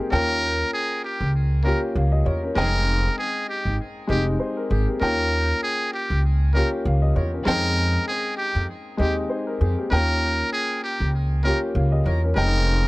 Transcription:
Already playing: G#3 C4 D#4 G#4 A#4 C5
0.00 A#3 G4
0.10 D#2 A#3 C#4 F4 A#4 G5
0.73 G#4
1.04 G4
1.21 C#2
1.64 A#3 C#4 F4 G4 A#4
1.95 C#2 F5
2.12 G4 D#5
2.26 E2 F4 C#5
2.44 C#4 A#4
2.55 F1 D#3 G#3 C4 D#4 G#4 A#4 G5
3.18 G#4
3.49 G4
3.65 G#1
4.07 F1 G#3 C4 D#4 G4
4.40 D#4 C5
4.57 A#4
4.71 G#1 C4 G#4
4.88 A#3 G4
5.00 D#2 A#3 C#4 F4 A#4 G5
5.63 G#4
5.94 G4
6.10 C#2
6.54 A#3 C#4 F4 G4 A#4
6.85 C#2 F5
7.02 G4 D#5
7.16 E2 F4 C#5
7.34 C#4 A#4
7.45 F2 D#3 G#3 C4 D#4 G#4 A#4 G5
8.08 G#4
8.37 G4
8.55 F2
8.97 D#2 G#3 C4 D#4 G4
9.30 D#4 C5
9.47 A#4
9.61 F2 C4 G#4
9.79 A#3 G4
9.90 D#2 A#3 C#4 F4 A#4 G5
10.53 G#4
10.84 G4
11.00 C#2
11.44 A#3 C#4 F4 G4 A#4
11.75 C#2 F5
11.92 G4 D#5
12.06 E2 F4 C#5
12.24 C#4 A#4
12.35 F1 G#3 C4 D#4 A#4 G5

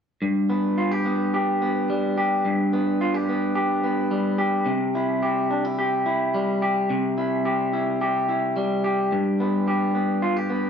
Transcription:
0.22 G2
0.50 B3
0.78 F4
0.91 G4
1.05 B3
1.34 G4
1.62 B3
1.90 G3
2.18 G4
2.45 G2
2.73 B3
3.01 F4
3.14 G4
3.29 B3
3.55 G4
3.84 B3
4.11 G3
4.38 G4
4.66 C3
4.95 E4
5.23 G4
5.51 D4
5.65 E4
5.79 G4
6.06 E4
6.34 G3
6.62 G4
6.90 C3
7.18 E4
7.45 G4
7.73 E4
8.01 G4
8.29 E4
8.56 G3
8.84 G4
9.12 G2
9.40 B3
9.68 G4
9.95 B3
10.22 F4
10.37 G4
10.50 B3

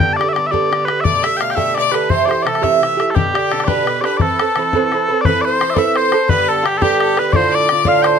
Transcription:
Already playing: G5
0.00 G2 D3 B3 G4, bodhran
0.13 D5 A5
0.19 D3 B3 G4, bodhran
0.29 E5
0.33 G2 D3 D5, bodhran
0.37 B3 G4
0.47 E5
0.51 G2 D3 B3 G4 D5, bodhran
0.69 G2 D3 B3 G4, bodhran
0.85 B4, bodhran
0.90 D3 B3
1.01 B2 D5 E5
1.05 D3 A3 G4, bodhran
1.23 D3 A3 G4 E5, bodhran
1.37 B2 D3 F5 G5, bodhran
1.41 A3 G4 F5
1.50 G5, bodhran
1.55 B2 D3 A3 G4 E5, bodhran
1.75 B2 D3 A3 G4 D5, bodhran
1.92 D3 A3 G4 B4, bodhran
2.09 C3 E3 A3 G4 C5, bodhran
2.25 A3 G4 C5 D5
2.30 E3 C5, bodhran
2.42 C3 E3 D5
2.46 A3 G4 A4, bodhran
2.55 bodhran
2.62 C3 E3 A3 G4 E5, bodhran
2.80 C3 E3 A3 G4, bodhran
2.97 E3 A3 G4, bodhran
3.10 B2 A4
3.15 D3 D4 G4, bodhran
3.34 D3 D4 G4, bodhran
3.50 B2 D3 D4 G4 A4, bodhran
3.60 bodhran
3.64 D4 G4 B4 D5, bodhran
3.69 B2 D3 B4
3.85 B2 D3 D4 G4, bodhran
4.01 D3 D4 G4 B4 D5, bodhran
4.05 B4
4.17 E3 C4 D5, bodhran
4.21 A4 B4
4.39 C4 A4 B4, bodhran
4.56 E3 C4 A4 B4, bodhran
4.73 E3 C4 A4 B4, bodhran
4.91 E3 C4 A4 B4, bodhran
5.08 C4 A4 B4
5.21 D5, bodhran
5.25 E3 C4 A4 B4
5.41 C5 D5
5.45 C5
5.60 E3 C4 A4 B4, bodhran
5.70 E5
5.74 E3 C4 A4 B4 D5 E5, bodhran
5.79 E5
5.96 C5, bodhran
6.12 C4 A4 B4, bodhran
6.28 G2 D3 B3 G4 B4, bodhran
6.48 A4
6.62 G2 D3 B3 F4, bodhran
6.66 G4
6.77 G4 A4
6.82 G2 D3 B3 G4, bodhran
7.00 A4, bodhran
7.16 B3 G4 B4, bodhran
7.20 D3
7.29 B4 D5, bodhran
7.33 A2 D3 D4 F4 C5
7.51 D5
7.69 A2 D3 D4 F4, bodhran
7.85 A2 D3 D4 F4 F5, bodhran
8.02 C5 G5, bodhran
8.06 C5

